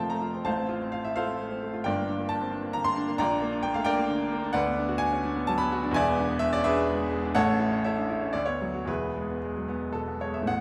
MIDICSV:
0, 0, Header, 1, 2, 480
1, 0, Start_track
1, 0, Tempo, 466563
1, 477, Time_signature, 3, 2, 24, 8
1, 1907, Tempo, 449775
1, 5267, Tempo, 470219
1, 7667, Tempo, 497925
1, 8627, Tempo, 532860
1, 10660, End_track
2, 0, Start_track
2, 0, Title_t, "Grand piano"
2, 0, Program_c, 0, 0
2, 0, Control_c, 0, 64, 127
2, 0, Note_on_c, 0, 29, 64
2, 0, Note_on_c, 0, 41, 71
2, 0, Note_on_c, 0, 53, 54
2, 0, Note_on_c, 0, 57, 59
2, 0, Note_on_c, 0, 58, 50
2, 0, Note_on_c, 0, 60, 64
2, 0, Note_on_c, 0, 65, 54
2, 0, Note_on_c, 0, 69, 80
2, 0, Note_on_c, 0, 72, 76
2, 0, Note_on_c, 0, 77, 100
2, 0, Note_on_c, 0, 79, 95
2, 0, Note_on_c, 0, 81, 91
2, 100, Note_on_c, 0, 82, 94
2, 105, Note_off_c, 0, 81, 0
2, 120, Note_off_c, 0, 57, 0
2, 120, Note_on_c, 0, 57, 58
2, 189, Note_off_c, 0, 53, 0
2, 220, Note_off_c, 0, 65, 0
2, 220, Note_on_c, 0, 65, 64
2, 312, Note_off_c, 0, 57, 0
2, 356, Note_off_c, 0, 60, 0
2, 356, Note_on_c, 0, 60, 55
2, 422, Note_off_c, 0, 65, 0
2, 429, Note_off_c, 0, 29, 0
2, 431, Note_off_c, 0, 41, 0
2, 460, Note_on_c, 0, 81, 99
2, 464, Note_on_c, 0, 33, 69
2, 467, Note_off_c, 0, 72, 0
2, 467, Note_on_c, 0, 72, 81
2, 471, Note_off_c, 0, 77, 0
2, 471, Note_on_c, 0, 77, 74
2, 472, Note_off_c, 0, 82, 0
2, 474, Note_on_c, 0, 45, 74
2, 477, Note_off_c, 0, 60, 0
2, 497, Control_c, 0, 64, 0
2, 500, Note_off_c, 0, 58, 0
2, 502, Note_off_c, 0, 79, 0
2, 506, Note_off_c, 0, 69, 0
2, 590, Note_on_c, 0, 60, 62
2, 639, Control_c, 0, 64, 127
2, 709, Note_on_c, 0, 65, 66
2, 783, Note_off_c, 0, 60, 0
2, 842, Note_on_c, 0, 60, 60
2, 901, Note_off_c, 0, 65, 0
2, 913, Note_off_c, 0, 72, 0
2, 915, Note_off_c, 0, 77, 0
2, 942, Note_off_c, 0, 81, 0
2, 945, Note_on_c, 0, 77, 91
2, 961, Note_on_c, 0, 65, 57
2, 1026, Note_off_c, 0, 60, 0
2, 1067, Note_off_c, 0, 77, 0
2, 1075, Note_on_c, 0, 76, 85
2, 1094, Note_on_c, 0, 64, 50
2, 1147, Note_off_c, 0, 65, 0
2, 1190, Note_on_c, 0, 77, 105
2, 1193, Note_off_c, 0, 76, 0
2, 1198, Note_on_c, 0, 72, 81
2, 1201, Note_on_c, 0, 65, 62
2, 1201, Note_on_c, 0, 69, 82
2, 1203, Note_off_c, 0, 64, 0
2, 1308, Note_on_c, 0, 60, 66
2, 1391, Note_off_c, 0, 65, 0
2, 1436, Note_on_c, 0, 57, 57
2, 1505, Note_off_c, 0, 60, 0
2, 1555, Note_on_c, 0, 60, 57
2, 1627, Note_off_c, 0, 57, 0
2, 1674, Note_on_c, 0, 57, 60
2, 1744, Note_off_c, 0, 60, 0
2, 1788, Note_on_c, 0, 65, 66
2, 1859, Note_off_c, 0, 33, 0
2, 1861, Note_off_c, 0, 57, 0
2, 1864, Note_off_c, 0, 45, 0
2, 1870, Note_off_c, 0, 72, 0
2, 1871, Note_off_c, 0, 69, 0
2, 1894, Note_on_c, 0, 79, 105
2, 1905, Note_on_c, 0, 31, 76
2, 1906, Note_off_c, 0, 65, 0
2, 1906, Note_on_c, 0, 70, 74
2, 1907, Note_off_c, 0, 77, 0
2, 1911, Note_on_c, 0, 43, 78
2, 1914, Note_on_c, 0, 74, 87
2, 1927, Control_c, 0, 64, 0
2, 2024, Note_on_c, 0, 58, 68
2, 2107, Control_c, 0, 64, 127
2, 2145, Note_on_c, 0, 62, 61
2, 2219, Note_off_c, 0, 58, 0
2, 2272, Note_on_c, 0, 58, 64
2, 2339, Note_off_c, 0, 62, 0
2, 2354, Note_off_c, 0, 70, 0
2, 2358, Note_off_c, 0, 74, 0
2, 2370, Note_on_c, 0, 81, 110
2, 2380, Note_on_c, 0, 62, 64
2, 2381, Note_off_c, 0, 79, 0
2, 2461, Note_off_c, 0, 58, 0
2, 2502, Note_on_c, 0, 60, 59
2, 2574, Note_off_c, 0, 62, 0
2, 2611, Note_on_c, 0, 62, 64
2, 2623, Note_off_c, 0, 60, 0
2, 2735, Note_on_c, 0, 58, 62
2, 2806, Note_off_c, 0, 62, 0
2, 2846, Note_on_c, 0, 82, 110
2, 2850, Note_off_c, 0, 81, 0
2, 2865, Note_on_c, 0, 50, 58
2, 2925, Note_off_c, 0, 58, 0
2, 2965, Note_on_c, 0, 84, 116
2, 2969, Note_off_c, 0, 82, 0
2, 2981, Note_on_c, 0, 58, 61
2, 3049, Note_off_c, 0, 50, 0
2, 3087, Note_on_c, 0, 62, 79
2, 3166, Note_off_c, 0, 58, 0
2, 3215, Note_on_c, 0, 58, 67
2, 3280, Note_off_c, 0, 62, 0
2, 3287, Note_off_c, 0, 31, 0
2, 3290, Note_off_c, 0, 43, 0
2, 3325, Note_off_c, 0, 84, 0
2, 3326, Note_on_c, 0, 82, 120
2, 3331, Note_on_c, 0, 34, 79
2, 3333, Note_off_c, 0, 58, 0
2, 3336, Note_on_c, 0, 79, 90
2, 3342, Note_on_c, 0, 74, 94
2, 3343, Note_on_c, 0, 46, 85
2, 3349, Control_c, 0, 64, 0
2, 3463, Note_on_c, 0, 62, 74
2, 3508, Control_c, 0, 64, 127
2, 3576, Note_on_c, 0, 58, 78
2, 3652, Note_off_c, 0, 62, 0
2, 3686, Note_on_c, 0, 62, 75
2, 3769, Note_off_c, 0, 58, 0
2, 3782, Note_off_c, 0, 79, 0
2, 3788, Note_off_c, 0, 74, 0
2, 3798, Note_on_c, 0, 79, 111
2, 3808, Note_on_c, 0, 58, 66
2, 3813, Note_off_c, 0, 82, 0
2, 3883, Note_off_c, 0, 62, 0
2, 3923, Note_on_c, 0, 77, 102
2, 3927, Note_off_c, 0, 79, 0
2, 3936, Note_on_c, 0, 57, 69
2, 4004, Note_off_c, 0, 58, 0
2, 4032, Note_on_c, 0, 79, 127
2, 4045, Note_on_c, 0, 70, 107
2, 4046, Note_on_c, 0, 62, 80
2, 4047, Note_on_c, 0, 74, 95
2, 4049, Note_off_c, 0, 77, 0
2, 4056, Note_off_c, 0, 57, 0
2, 4166, Note_on_c, 0, 58, 83
2, 4244, Note_off_c, 0, 62, 0
2, 4291, Note_on_c, 0, 50, 65
2, 4365, Note_off_c, 0, 58, 0
2, 4418, Note_on_c, 0, 62, 69
2, 4489, Note_off_c, 0, 50, 0
2, 4544, Note_on_c, 0, 58, 82
2, 4613, Note_off_c, 0, 62, 0
2, 4667, Note_on_c, 0, 62, 83
2, 4734, Note_off_c, 0, 70, 0
2, 4735, Note_off_c, 0, 74, 0
2, 4736, Note_off_c, 0, 58, 0
2, 4739, Note_off_c, 0, 34, 0
2, 4745, Note_off_c, 0, 46, 0
2, 4760, Note_on_c, 0, 78, 118
2, 4770, Note_off_c, 0, 79, 0
2, 4770, Note_on_c, 0, 74, 101
2, 4775, Note_on_c, 0, 71, 97
2, 4777, Note_on_c, 0, 38, 97
2, 4785, Note_off_c, 0, 62, 0
2, 4800, Control_c, 0, 64, 0
2, 4906, Note_on_c, 0, 59, 75
2, 4939, Control_c, 0, 64, 127
2, 5021, Note_on_c, 0, 62, 79
2, 5098, Note_off_c, 0, 59, 0
2, 5143, Note_on_c, 0, 66, 83
2, 5218, Note_off_c, 0, 62, 0
2, 5227, Note_off_c, 0, 74, 0
2, 5230, Note_off_c, 0, 71, 0
2, 5245, Note_on_c, 0, 80, 127
2, 5257, Note_off_c, 0, 78, 0
2, 5260, Note_on_c, 0, 62, 77
2, 5338, Note_off_c, 0, 66, 0
2, 5392, Note_on_c, 0, 61, 68
2, 5453, Note_off_c, 0, 62, 0
2, 5503, Note_on_c, 0, 62, 84
2, 5507, Note_off_c, 0, 61, 0
2, 5629, Note_on_c, 0, 59, 80
2, 5694, Note_off_c, 0, 62, 0
2, 5731, Note_off_c, 0, 80, 0
2, 5747, Note_on_c, 0, 81, 123
2, 5763, Note_on_c, 0, 54, 74
2, 5817, Note_off_c, 0, 59, 0
2, 5855, Note_on_c, 0, 83, 127
2, 5864, Note_off_c, 0, 81, 0
2, 5873, Note_on_c, 0, 59, 78
2, 5944, Note_off_c, 0, 54, 0
2, 6001, Note_on_c, 0, 66, 91
2, 6058, Note_off_c, 0, 59, 0
2, 6116, Note_on_c, 0, 62, 85
2, 6176, Note_off_c, 0, 38, 0
2, 6182, Note_off_c, 0, 66, 0
2, 6195, Note_on_c, 0, 40, 102
2, 6216, Note_off_c, 0, 83, 0
2, 6227, Note_off_c, 0, 62, 0
2, 6228, Note_on_c, 0, 80, 127
2, 6233, Note_on_c, 0, 28, 93
2, 6238, Control_c, 0, 64, 0
2, 6245, Note_on_c, 0, 76, 93
2, 6246, Note_on_c, 0, 74, 114
2, 6365, Note_on_c, 0, 59, 82
2, 6415, Control_c, 0, 64, 127
2, 6473, Note_on_c, 0, 62, 79
2, 6546, Note_off_c, 0, 59, 0
2, 6577, Note_on_c, 0, 59, 79
2, 6662, Note_off_c, 0, 62, 0
2, 6672, Note_off_c, 0, 76, 0
2, 6685, Note_off_c, 0, 74, 0
2, 6687, Note_on_c, 0, 76, 127
2, 6701, Note_on_c, 0, 62, 84
2, 6710, Note_off_c, 0, 80, 0
2, 6776, Note_off_c, 0, 59, 0
2, 6819, Note_off_c, 0, 76, 0
2, 6823, Note_on_c, 0, 74, 116
2, 6841, Note_on_c, 0, 61, 65
2, 6899, Note_off_c, 0, 62, 0
2, 6938, Note_on_c, 0, 76, 127
2, 6948, Note_off_c, 0, 74, 0
2, 6948, Note_on_c, 0, 62, 87
2, 6948, Note_on_c, 0, 68, 104
2, 6951, Note_on_c, 0, 71, 104
2, 6957, Note_off_c, 0, 61, 0
2, 7067, Note_on_c, 0, 59, 75
2, 7142, Note_off_c, 0, 62, 0
2, 7186, Note_on_c, 0, 56, 69
2, 7261, Note_off_c, 0, 59, 0
2, 7300, Note_on_c, 0, 59, 73
2, 7380, Note_off_c, 0, 56, 0
2, 7421, Note_on_c, 0, 56, 75
2, 7496, Note_off_c, 0, 59, 0
2, 7552, Note_on_c, 0, 62, 80
2, 7616, Note_off_c, 0, 40, 0
2, 7617, Note_off_c, 0, 56, 0
2, 7627, Note_off_c, 0, 68, 0
2, 7629, Note_off_c, 0, 71, 0
2, 7635, Note_off_c, 0, 28, 0
2, 7660, Note_on_c, 0, 78, 127
2, 7662, Note_on_c, 0, 33, 95
2, 7663, Note_off_c, 0, 76, 0
2, 7671, Note_off_c, 0, 62, 0
2, 7671, Note_on_c, 0, 69, 106
2, 7671, Note_on_c, 0, 73, 107
2, 7673, Note_on_c, 0, 45, 92
2, 7688, Control_c, 0, 64, 0
2, 7783, Note_on_c, 0, 61, 74
2, 7865, Control_c, 0, 64, 127
2, 7901, Note_on_c, 0, 64, 78
2, 7971, Note_off_c, 0, 61, 0
2, 8016, Note_on_c, 0, 61, 72
2, 8091, Note_off_c, 0, 64, 0
2, 8107, Note_off_c, 0, 69, 0
2, 8107, Note_off_c, 0, 73, 0
2, 8135, Note_off_c, 0, 78, 0
2, 8140, Note_on_c, 0, 76, 95
2, 8149, Note_on_c, 0, 73, 75
2, 8151, Note_on_c, 0, 69, 75
2, 8156, Note_on_c, 0, 64, 69
2, 8211, Note_off_c, 0, 61, 0
2, 8259, Note_on_c, 0, 62, 58
2, 8342, Note_off_c, 0, 64, 0
2, 8382, Note_off_c, 0, 62, 0
2, 8386, Note_on_c, 0, 64, 73
2, 8500, Note_on_c, 0, 61, 68
2, 8581, Note_off_c, 0, 64, 0
2, 8596, Note_off_c, 0, 33, 0
2, 8600, Note_off_c, 0, 73, 0
2, 8601, Note_off_c, 0, 69, 0
2, 8602, Note_off_c, 0, 45, 0
2, 8607, Note_on_c, 0, 74, 98
2, 8619, Note_on_c, 0, 38, 81
2, 8626, Note_off_c, 0, 61, 0
2, 8629, Note_off_c, 0, 76, 0
2, 8645, Control_c, 0, 64, 0
2, 8722, Note_on_c, 0, 73, 92
2, 8735, Note_off_c, 0, 74, 0
2, 8738, Note_on_c, 0, 59, 61
2, 8785, Control_c, 0, 64, 127
2, 8868, Note_on_c, 0, 54, 66
2, 8932, Note_off_c, 0, 59, 0
2, 8985, Note_on_c, 0, 66, 59
2, 9059, Note_off_c, 0, 54, 0
2, 9078, Note_on_c, 0, 40, 75
2, 9087, Note_off_c, 0, 38, 0
2, 9095, Note_off_c, 0, 73, 0
2, 9101, Note_on_c, 0, 28, 68
2, 9101, Note_on_c, 0, 71, 93
2, 9105, Note_on_c, 0, 68, 69
2, 9106, Note_on_c, 0, 64, 63
2, 9107, Note_off_c, 0, 66, 0
2, 9121, Control_c, 0, 64, 0
2, 9240, Note_on_c, 0, 59, 60
2, 9278, Control_c, 0, 64, 127
2, 9359, Note_on_c, 0, 56, 64
2, 9432, Note_off_c, 0, 59, 0
2, 9485, Note_on_c, 0, 59, 55
2, 9549, Note_off_c, 0, 56, 0
2, 9606, Note_on_c, 0, 56, 65
2, 9669, Note_off_c, 0, 59, 0
2, 9730, Note_on_c, 0, 54, 49
2, 9787, Note_off_c, 0, 56, 0
2, 9830, Note_on_c, 0, 59, 72
2, 9837, Note_off_c, 0, 54, 0
2, 9949, Note_on_c, 0, 56, 55
2, 10015, Note_off_c, 0, 59, 0
2, 10024, Note_off_c, 0, 64, 0
2, 10024, Note_off_c, 0, 68, 0
2, 10047, Note_on_c, 0, 69, 84
2, 10058, Note_off_c, 0, 71, 0
2, 10059, Note_on_c, 0, 47, 53
2, 10135, Note_off_c, 0, 56, 0
2, 10183, Note_on_c, 0, 59, 56
2, 10252, Note_off_c, 0, 47, 0
2, 10295, Note_off_c, 0, 69, 0
2, 10304, Note_on_c, 0, 73, 77
2, 10316, Note_on_c, 0, 56, 59
2, 10378, Note_off_c, 0, 59, 0
2, 10419, Note_on_c, 0, 76, 76
2, 10426, Note_off_c, 0, 73, 0
2, 10436, Note_on_c, 0, 59, 58
2, 10493, Note_on_c, 0, 45, 73
2, 10498, Note_off_c, 0, 40, 0
2, 10506, Note_off_c, 0, 56, 0
2, 10509, Note_off_c, 0, 28, 0
2, 10539, Note_on_c, 0, 33, 70
2, 10540, Note_on_c, 0, 78, 110
2, 10545, Note_off_c, 0, 76, 0
2, 10553, Note_off_c, 0, 59, 0
2, 10563, Control_c, 0, 64, 0
2, 10660, Note_off_c, 0, 33, 0
2, 10660, Note_off_c, 0, 45, 0
2, 10660, Note_off_c, 0, 78, 0
2, 10660, End_track
0, 0, End_of_file